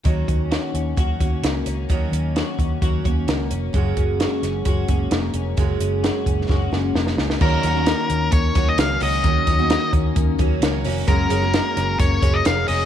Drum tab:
CC |----------------|----------------|----------------|----------------|
HH |x-x-x-x-x-x-x-x-|x-x-x-x-x-x-x-x-|x-x-x-x-x-x-x-x-|x-x-x-x---------|
SD |----o-------o---|----o-------o---|----o-o-----o---|----o---o-o-oooo|
BD |o-o-----o-o-----|o-----o-o-o-----|o-o-----o-o-----|o-----o-o-------|

CC |x---------------|----------------|----------------|
HH |--x-x-x-x-x-x-o-|x-x-x-x-x-x-x-o-|x-x-x-x-x-x-x-o-|
SD |----o-------o---|----o-------o---|----o-o-----o---|
BD |o-------o-o-----|o-o---o-o-o-----|o-------o-o-----|